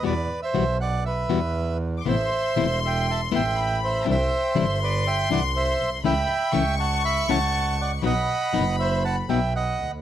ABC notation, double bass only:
X:1
M:4/4
L:1/8
Q:1/4=120
K:Ador
V:1 name="Double bass" clef=bass
E,, z B,,,3 E,,3 | A,,, z E,,,3 A,,,3 | C,, z G,,,3 C,,2 B,,, | ^C,, z C,,3 C,,3 |
B,,, z F,,,3 B,,,2 D,, |]